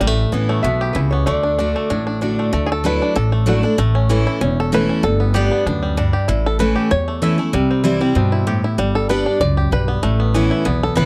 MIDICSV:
0, 0, Header, 1, 5, 480
1, 0, Start_track
1, 0, Key_signature, 2, "major"
1, 0, Tempo, 313152
1, 17, Time_signature, 4, 2, 24, 8
1, 16945, End_track
2, 0, Start_track
2, 0, Title_t, "Resonator guitar played with a steel bar"
2, 0, Program_c, 0, 25
2, 750, Note_on_c, 0, 73, 85
2, 960, Note_on_c, 0, 76, 99
2, 987, Note_off_c, 0, 73, 0
2, 1426, Note_on_c, 0, 71, 90
2, 1454, Note_off_c, 0, 76, 0
2, 1503, Note_off_c, 0, 71, 0
2, 1696, Note_on_c, 0, 73, 92
2, 1924, Note_off_c, 0, 73, 0
2, 1931, Note_on_c, 0, 74, 90
2, 3323, Note_off_c, 0, 74, 0
2, 16945, End_track
3, 0, Start_track
3, 0, Title_t, "Five-string banjo"
3, 0, Program_c, 1, 105
3, 8, Note_on_c, 1, 55, 76
3, 110, Note_off_c, 1, 55, 0
3, 110, Note_on_c, 1, 57, 77
3, 495, Note_off_c, 1, 57, 0
3, 499, Note_on_c, 1, 59, 57
3, 756, Note_on_c, 1, 57, 70
3, 958, Note_off_c, 1, 59, 0
3, 977, Note_on_c, 1, 59, 60
3, 1242, Note_on_c, 1, 67, 62
3, 1471, Note_on_c, 1, 64, 56
3, 1665, Note_off_c, 1, 59, 0
3, 1724, Note_on_c, 1, 59, 58
3, 1770, Note_off_c, 1, 57, 0
3, 1904, Note_off_c, 1, 67, 0
3, 1942, Note_on_c, 1, 57, 73
3, 1950, Note_off_c, 1, 59, 0
3, 1950, Note_off_c, 1, 64, 0
3, 2198, Note_on_c, 1, 62, 58
3, 2412, Note_off_c, 1, 62, 0
3, 2431, Note_on_c, 1, 62, 58
3, 2630, Note_off_c, 1, 57, 0
3, 2695, Note_on_c, 1, 57, 68
3, 2898, Note_off_c, 1, 62, 0
3, 2917, Note_on_c, 1, 62, 57
3, 3151, Note_off_c, 1, 62, 0
3, 3169, Note_on_c, 1, 62, 59
3, 3353, Note_off_c, 1, 57, 0
3, 3383, Note_off_c, 1, 62, 0
3, 3401, Note_on_c, 1, 62, 56
3, 3666, Note_on_c, 1, 57, 55
3, 3864, Note_off_c, 1, 57, 0
3, 3879, Note_off_c, 1, 62, 0
3, 3882, Note_on_c, 1, 57, 71
3, 4085, Note_on_c, 1, 68, 73
3, 4138, Note_off_c, 1, 68, 0
3, 4168, Note_on_c, 1, 69, 97
3, 4382, Note_off_c, 1, 69, 0
3, 4388, Note_on_c, 1, 71, 98
3, 4631, Note_on_c, 1, 62, 59
3, 4842, Note_off_c, 1, 71, 0
3, 4848, Note_on_c, 1, 69, 87
3, 5087, Note_off_c, 1, 57, 0
3, 5093, Note_on_c, 1, 57, 60
3, 5283, Note_off_c, 1, 62, 0
3, 5290, Note_off_c, 1, 69, 0
3, 5341, Note_on_c, 1, 66, 70
3, 5573, Note_off_c, 1, 66, 0
3, 5579, Note_on_c, 1, 62, 58
3, 5754, Note_off_c, 1, 57, 0
3, 5802, Note_off_c, 1, 62, 0
3, 5802, Note_on_c, 1, 57, 75
3, 6054, Note_on_c, 1, 61, 59
3, 6284, Note_on_c, 1, 52, 55
3, 6482, Note_off_c, 1, 57, 0
3, 6543, Note_on_c, 1, 64, 62
3, 6715, Note_off_c, 1, 61, 0
3, 6763, Note_on_c, 1, 61, 61
3, 6963, Note_off_c, 1, 52, 0
3, 7043, Note_off_c, 1, 64, 0
3, 7049, Note_on_c, 1, 69, 87
3, 7243, Note_off_c, 1, 69, 0
3, 7272, Note_on_c, 1, 71, 100
3, 7443, Note_off_c, 1, 61, 0
3, 7500, Note_on_c, 1, 61, 59
3, 7702, Note_off_c, 1, 71, 0
3, 7722, Note_off_c, 1, 61, 0
3, 7722, Note_on_c, 1, 69, 92
3, 7971, Note_on_c, 1, 59, 59
3, 8166, Note_off_c, 1, 69, 0
3, 8193, Note_on_c, 1, 67, 65
3, 8436, Note_off_c, 1, 59, 0
3, 8454, Note_on_c, 1, 59, 59
3, 8684, Note_on_c, 1, 62, 67
3, 8875, Note_off_c, 1, 67, 0
3, 8930, Note_on_c, 1, 55, 61
3, 9113, Note_off_c, 1, 59, 0
3, 9145, Note_off_c, 1, 62, 0
3, 9164, Note_on_c, 1, 62, 57
3, 9400, Note_on_c, 1, 67, 59
3, 9590, Note_off_c, 1, 55, 0
3, 9621, Note_off_c, 1, 62, 0
3, 9627, Note_on_c, 1, 64, 63
3, 9631, Note_off_c, 1, 67, 0
3, 9908, Note_on_c, 1, 69, 75
3, 10109, Note_off_c, 1, 69, 0
3, 10116, Note_on_c, 1, 71, 72
3, 10355, Note_on_c, 1, 67, 62
3, 10589, Note_off_c, 1, 71, 0
3, 10595, Note_on_c, 1, 73, 99
3, 10849, Note_on_c, 1, 57, 59
3, 11021, Note_off_c, 1, 67, 0
3, 11039, Note_off_c, 1, 73, 0
3, 11081, Note_on_c, 1, 76, 87
3, 11312, Note_off_c, 1, 57, 0
3, 11330, Note_on_c, 1, 57, 62
3, 11552, Note_off_c, 1, 57, 0
3, 11558, Note_on_c, 1, 55, 77
3, 11756, Note_off_c, 1, 76, 0
3, 11773, Note_off_c, 1, 64, 0
3, 11812, Note_on_c, 1, 60, 56
3, 12017, Note_on_c, 1, 64, 56
3, 12277, Note_off_c, 1, 55, 0
3, 12283, Note_on_c, 1, 55, 76
3, 12467, Note_off_c, 1, 60, 0
3, 12513, Note_on_c, 1, 60, 67
3, 12703, Note_off_c, 1, 64, 0
3, 12757, Note_on_c, 1, 64, 60
3, 12942, Note_off_c, 1, 55, 0
3, 12985, Note_on_c, 1, 67, 55
3, 13190, Note_off_c, 1, 60, 0
3, 13229, Note_off_c, 1, 64, 0
3, 13248, Note_on_c, 1, 64, 64
3, 13464, Note_off_c, 1, 67, 0
3, 13469, Note_off_c, 1, 64, 0
3, 13470, Note_on_c, 1, 55, 74
3, 13723, Note_on_c, 1, 69, 89
3, 13939, Note_off_c, 1, 69, 0
3, 13945, Note_on_c, 1, 71, 84
3, 14147, Note_off_c, 1, 55, 0
3, 14191, Note_off_c, 1, 71, 0
3, 14197, Note_on_c, 1, 62, 61
3, 14415, Note_off_c, 1, 62, 0
3, 14421, Note_on_c, 1, 74, 99
3, 14674, Note_on_c, 1, 67, 62
3, 14905, Note_off_c, 1, 74, 0
3, 14911, Note_on_c, 1, 71, 83
3, 15145, Note_on_c, 1, 59, 63
3, 15334, Note_off_c, 1, 67, 0
3, 15374, Note_on_c, 1, 57, 79
3, 15375, Note_off_c, 1, 59, 0
3, 15585, Note_off_c, 1, 71, 0
3, 15631, Note_on_c, 1, 59, 57
3, 15856, Note_on_c, 1, 52, 60
3, 16110, Note_on_c, 1, 64, 61
3, 16290, Note_off_c, 1, 59, 0
3, 16338, Note_on_c, 1, 59, 69
3, 16384, Note_off_c, 1, 57, 0
3, 16536, Note_off_c, 1, 52, 0
3, 16600, Note_off_c, 1, 64, 0
3, 16607, Note_on_c, 1, 69, 89
3, 16806, Note_off_c, 1, 69, 0
3, 16812, Note_on_c, 1, 71, 104
3, 16945, Note_off_c, 1, 59, 0
3, 16945, Note_off_c, 1, 71, 0
3, 16945, End_track
4, 0, Start_track
4, 0, Title_t, "Steel-string acoustic guitar"
4, 0, Program_c, 2, 25
4, 14, Note_on_c, 2, 45, 90
4, 491, Note_on_c, 2, 52, 66
4, 503, Note_on_c, 2, 59, 62
4, 512, Note_on_c, 2, 61, 64
4, 513, Note_on_c, 2, 64, 69
4, 935, Note_off_c, 2, 45, 0
4, 955, Note_off_c, 2, 52, 0
4, 961, Note_off_c, 2, 59, 0
4, 965, Note_off_c, 2, 61, 0
4, 966, Note_off_c, 2, 64, 0
4, 986, Note_on_c, 2, 47, 90
4, 1444, Note_off_c, 2, 47, 0
4, 1452, Note_on_c, 2, 49, 86
4, 1918, Note_off_c, 2, 49, 0
4, 1945, Note_on_c, 2, 50, 85
4, 2414, Note_off_c, 2, 50, 0
4, 2432, Note_on_c, 2, 50, 62
4, 2437, Note_on_c, 2, 57, 56
4, 2452, Note_on_c, 2, 62, 61
4, 2455, Note_on_c, 2, 66, 68
4, 2890, Note_off_c, 2, 50, 0
4, 2892, Note_off_c, 2, 57, 0
4, 2899, Note_off_c, 2, 62, 0
4, 2901, Note_off_c, 2, 66, 0
4, 2913, Note_on_c, 2, 45, 85
4, 3391, Note_on_c, 2, 50, 54
4, 3400, Note_on_c, 2, 57, 56
4, 3410, Note_on_c, 2, 62, 62
4, 3412, Note_on_c, 2, 66, 61
4, 3830, Note_off_c, 2, 45, 0
4, 3851, Note_off_c, 2, 50, 0
4, 3855, Note_off_c, 2, 57, 0
4, 3860, Note_off_c, 2, 62, 0
4, 3861, Note_off_c, 2, 66, 0
4, 3873, Note_on_c, 2, 50, 91
4, 4350, Note_on_c, 2, 54, 86
4, 4363, Note_on_c, 2, 57, 87
4, 4368, Note_on_c, 2, 62, 89
4, 4379, Note_on_c, 2, 64, 99
4, 4790, Note_off_c, 2, 50, 0
4, 4811, Note_off_c, 2, 54, 0
4, 4817, Note_off_c, 2, 57, 0
4, 4820, Note_off_c, 2, 62, 0
4, 4825, Note_off_c, 2, 64, 0
4, 4836, Note_on_c, 2, 45, 88
4, 5303, Note_on_c, 2, 54, 85
4, 5310, Note_on_c, 2, 57, 92
4, 5317, Note_on_c, 2, 62, 93
4, 5328, Note_on_c, 2, 64, 84
4, 5545, Note_off_c, 2, 64, 0
4, 5553, Note_off_c, 2, 54, 0
4, 5557, Note_off_c, 2, 57, 0
4, 5560, Note_off_c, 2, 62, 0
4, 5563, Note_on_c, 2, 64, 59
4, 5592, Note_on_c, 2, 62, 48
4, 5752, Note_off_c, 2, 45, 0
4, 5785, Note_off_c, 2, 64, 0
4, 5796, Note_on_c, 2, 45, 97
4, 5800, Note_off_c, 2, 62, 0
4, 6275, Note_on_c, 2, 52, 86
4, 6279, Note_on_c, 2, 57, 87
4, 6286, Note_on_c, 2, 61, 87
4, 6291, Note_on_c, 2, 64, 96
4, 6712, Note_off_c, 2, 45, 0
4, 6734, Note_off_c, 2, 52, 0
4, 6736, Note_off_c, 2, 57, 0
4, 6740, Note_off_c, 2, 61, 0
4, 6742, Note_off_c, 2, 64, 0
4, 6761, Note_on_c, 2, 40, 91
4, 7236, Note_on_c, 2, 52, 77
4, 7245, Note_on_c, 2, 57, 91
4, 7254, Note_on_c, 2, 61, 81
4, 7259, Note_on_c, 2, 64, 105
4, 7674, Note_off_c, 2, 40, 0
4, 7694, Note_off_c, 2, 52, 0
4, 7698, Note_off_c, 2, 57, 0
4, 7703, Note_off_c, 2, 61, 0
4, 7706, Note_off_c, 2, 64, 0
4, 7712, Note_on_c, 2, 43, 86
4, 8184, Note_on_c, 2, 55, 93
4, 8199, Note_on_c, 2, 59, 86
4, 8209, Note_on_c, 2, 62, 101
4, 8214, Note_on_c, 2, 67, 98
4, 8628, Note_off_c, 2, 43, 0
4, 8647, Note_off_c, 2, 55, 0
4, 8655, Note_off_c, 2, 59, 0
4, 8660, Note_off_c, 2, 62, 0
4, 8662, Note_off_c, 2, 67, 0
4, 8690, Note_on_c, 2, 42, 83
4, 9140, Note_off_c, 2, 42, 0
4, 9155, Note_on_c, 2, 43, 88
4, 9612, Note_off_c, 2, 43, 0
4, 9634, Note_on_c, 2, 45, 92
4, 10101, Note_on_c, 2, 52, 90
4, 10114, Note_on_c, 2, 57, 79
4, 10116, Note_on_c, 2, 61, 99
4, 10122, Note_on_c, 2, 64, 91
4, 10547, Note_off_c, 2, 45, 0
4, 10563, Note_off_c, 2, 52, 0
4, 10570, Note_off_c, 2, 57, 0
4, 10571, Note_off_c, 2, 61, 0
4, 10574, Note_off_c, 2, 64, 0
4, 10589, Note_on_c, 2, 40, 84
4, 11063, Note_on_c, 2, 52, 90
4, 11071, Note_on_c, 2, 57, 82
4, 11076, Note_on_c, 2, 61, 85
4, 11090, Note_on_c, 2, 64, 82
4, 11291, Note_off_c, 2, 64, 0
4, 11309, Note_off_c, 2, 52, 0
4, 11309, Note_on_c, 2, 64, 60
4, 11313, Note_off_c, 2, 57, 0
4, 11315, Note_off_c, 2, 61, 0
4, 11335, Note_on_c, 2, 61, 42
4, 11503, Note_off_c, 2, 40, 0
4, 11534, Note_off_c, 2, 64, 0
4, 11545, Note_on_c, 2, 48, 87
4, 11547, Note_off_c, 2, 61, 0
4, 12011, Note_on_c, 2, 52, 84
4, 12022, Note_on_c, 2, 55, 86
4, 12030, Note_on_c, 2, 60, 82
4, 12032, Note_on_c, 2, 64, 102
4, 12253, Note_off_c, 2, 64, 0
4, 12262, Note_off_c, 2, 52, 0
4, 12267, Note_off_c, 2, 55, 0
4, 12271, Note_off_c, 2, 60, 0
4, 12272, Note_on_c, 2, 64, 63
4, 12294, Note_on_c, 2, 60, 44
4, 12459, Note_off_c, 2, 48, 0
4, 12494, Note_off_c, 2, 64, 0
4, 12495, Note_on_c, 2, 47, 89
4, 12505, Note_off_c, 2, 60, 0
4, 12957, Note_off_c, 2, 47, 0
4, 12979, Note_on_c, 2, 45, 87
4, 13438, Note_off_c, 2, 45, 0
4, 13460, Note_on_c, 2, 43, 92
4, 13937, Note_on_c, 2, 55, 85
4, 13950, Note_on_c, 2, 59, 87
4, 13956, Note_on_c, 2, 62, 87
4, 13961, Note_on_c, 2, 67, 97
4, 14374, Note_off_c, 2, 43, 0
4, 14396, Note_off_c, 2, 55, 0
4, 14402, Note_off_c, 2, 59, 0
4, 14406, Note_off_c, 2, 62, 0
4, 14408, Note_off_c, 2, 67, 0
4, 14419, Note_on_c, 2, 42, 95
4, 14876, Note_off_c, 2, 42, 0
4, 14901, Note_on_c, 2, 43, 79
4, 15356, Note_off_c, 2, 43, 0
4, 15372, Note_on_c, 2, 45, 94
4, 15855, Note_on_c, 2, 52, 78
4, 15863, Note_on_c, 2, 59, 92
4, 15873, Note_on_c, 2, 61, 95
4, 15878, Note_on_c, 2, 64, 96
4, 16286, Note_off_c, 2, 45, 0
4, 16311, Note_off_c, 2, 52, 0
4, 16316, Note_off_c, 2, 59, 0
4, 16321, Note_off_c, 2, 61, 0
4, 16323, Note_off_c, 2, 64, 0
4, 16326, Note_on_c, 2, 40, 99
4, 16791, Note_on_c, 2, 52, 96
4, 16808, Note_on_c, 2, 59, 89
4, 16815, Note_on_c, 2, 61, 92
4, 16822, Note_on_c, 2, 64, 96
4, 16945, Note_off_c, 2, 40, 0
4, 16945, Note_off_c, 2, 52, 0
4, 16945, Note_off_c, 2, 59, 0
4, 16945, Note_off_c, 2, 61, 0
4, 16945, Note_off_c, 2, 64, 0
4, 16945, End_track
5, 0, Start_track
5, 0, Title_t, "Upright bass"
5, 0, Program_c, 3, 32
5, 5, Note_on_c, 3, 33, 87
5, 358, Note_off_c, 3, 33, 0
5, 489, Note_on_c, 3, 33, 79
5, 904, Note_off_c, 3, 33, 0
5, 973, Note_on_c, 3, 35, 81
5, 1387, Note_off_c, 3, 35, 0
5, 1460, Note_on_c, 3, 37, 86
5, 1872, Note_off_c, 3, 37, 0
5, 1949, Note_on_c, 3, 38, 83
5, 2646, Note_off_c, 3, 38, 0
5, 2919, Note_on_c, 3, 33, 79
5, 3613, Note_off_c, 3, 33, 0
5, 3879, Note_on_c, 3, 38, 92
5, 4573, Note_off_c, 3, 38, 0
5, 4850, Note_on_c, 3, 33, 93
5, 5541, Note_off_c, 3, 33, 0
5, 5798, Note_on_c, 3, 33, 93
5, 6493, Note_off_c, 3, 33, 0
5, 6761, Note_on_c, 3, 28, 97
5, 7454, Note_off_c, 3, 28, 0
5, 7714, Note_on_c, 3, 31, 93
5, 8409, Note_off_c, 3, 31, 0
5, 8673, Note_on_c, 3, 38, 91
5, 9368, Note_off_c, 3, 38, 0
5, 9631, Note_on_c, 3, 33, 86
5, 10325, Note_off_c, 3, 33, 0
5, 10600, Note_on_c, 3, 40, 85
5, 11290, Note_off_c, 3, 40, 0
5, 11546, Note_on_c, 3, 36, 86
5, 12240, Note_off_c, 3, 36, 0
5, 12506, Note_on_c, 3, 43, 91
5, 13199, Note_off_c, 3, 43, 0
5, 13462, Note_on_c, 3, 31, 86
5, 14156, Note_off_c, 3, 31, 0
5, 14412, Note_on_c, 3, 37, 88
5, 14823, Note_off_c, 3, 37, 0
5, 14885, Note_on_c, 3, 35, 84
5, 15298, Note_off_c, 3, 35, 0
5, 15377, Note_on_c, 3, 33, 90
5, 16070, Note_off_c, 3, 33, 0
5, 16341, Note_on_c, 3, 35, 84
5, 16745, Note_off_c, 3, 35, 0
5, 16820, Note_on_c, 3, 37, 96
5, 16945, Note_off_c, 3, 37, 0
5, 16945, End_track
0, 0, End_of_file